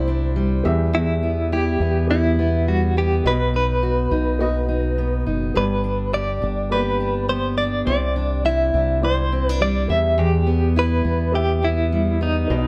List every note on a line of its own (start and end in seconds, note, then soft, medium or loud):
0.00 0.61 C2 loud
0.00 0.71 C3 medium
0.00 0.67 C4 medium
0.00 0.66 E4 medium
0.00 1.52 E4 medium
0.00 0.62 C5 medium
0.00 0.67 D5 loud
0.08 0.72 D4 medium
0.36 2.67 G3 medium
0.64 0.92 E2 medium
0.64 1.77 E2 loud
0.64 1.58 B3 medium
0.64 1.58 G4 medium
0.64 1.59 E5 loud
0.93 3.24 E2 medium
0.93 1.53 E4 medium
1.23 1.81 B3 medium
1.52 2.09 E4 medium
1.52 2.06 G4 medium
1.80 3.21 E2 loud
1.80 2.38 B3 medium
2.07 2.84 B3 medium
2.07 3.32 E4 medium
2.07 2.68 E4 medium
2.07 2.84 G4 medium
2.07 2.85 E5 medium
2.39 2.96 B3 medium
2.68 3.32 G3 medium
2.68 2.97 F#4 medium
2.97 3.54 B3 medium
2.97 3.24 G4 medium
3.24 4.07 B1 medium
3.24 5.56 B2 medium
3.24 4.00 B3 medium
3.24 4.00 F#4 medium
3.24 3.53 B4 loud
3.24 4.01 D#5 medium
3.54 4.10 D#4 medium
3.54 5.24 B4 loud
3.83 4.39 F#4 medium
4.11 5.23 B1 medium
4.11 4.67 D#4 medium
4.39 5.15 B3 medium
4.39 5.63 F#4 medium
4.39 5.16 F#4 medium
4.39 5.16 D#5 loud
4.69 5.25 D#4 medium
4.98 7.29 B3 medium
5.26 5.53 F#1 medium
5.26 5.62 D#4 medium
5.54 6.38 G1 loud
5.54 7.87 G2 medium
5.54 6.31 B3 medium
5.54 6.31 G4 medium
5.54 6.14 B4 medium
5.54 6.32 D5 medium
5.84 6.41 D4 medium
6.13 6.71 G4 medium
6.13 6.72 D5 medium
6.42 7.83 G1 medium
6.42 7.00 D4 medium
6.70 6.78 A#3 medium
6.70 7.47 G4 medium
6.70 8.44 G4 medium
6.70 7.25 B4 medium
6.70 7.47 D5 medium
6.76 7.49 B3 medium
7.00 7.57 D4 medium
7.29 7.94 B3 medium
7.29 7.56 C5 medium
7.58 7.94 D4 medium
7.58 7.85 D5 medium
7.85 8.70 C2 loud
7.85 9.96 C3 medium
7.85 8.62 C4 medium
7.85 8.62 E4 medium
7.85 8.45 D5 loud
7.85 8.63 D5 medium
8.16 8.73 D4 medium
8.45 9.03 E4 medium
8.45 9.04 E5 loud
8.74 9.85 C2 loud
8.74 9.32 D4 medium
9.01 9.77 C4 medium
9.01 9.78 E4 medium
9.01 10.76 E4 medium
9.01 9.47 C5 loud
9.01 9.78 D5 medium
9.32 9.49 C4 medium
9.47 9.96 D4 medium
9.47 9.62 B4 loud
9.60 11.92 G3 medium
9.60 9.88 D5 loud
9.88 11.01 E2 loud
9.88 10.17 E2 medium
9.88 10.82 B3 medium
9.88 10.83 G4 medium
9.88 10.19 E5 medium
9.88 10.83 E5 medium
10.18 12.49 E2 medium
10.18 10.72 G4 loud
10.47 11.04 B3 medium
10.76 11.34 E4 medium
10.76 11.35 B4 medium
11.05 12.45 E2 loud
11.05 11.62 B3 medium
11.32 12.08 B3 medium
11.32 12.09 G4 medium
11.32 11.64 G4 medium
11.32 12.09 E5 medium
11.62 12.20 B3 medium
11.62 12.22 E4 medium
11.92 12.57 G3 medium
12.21 12.67 B3 medium
12.21 12.67 D#4 medium
12.48 12.67 B1 loud
12.48 12.67 B2 medium
12.48 12.67 B3 medium
12.48 12.67 F#4 medium
12.48 12.57 D5 medium
12.56 12.67 D#5 medium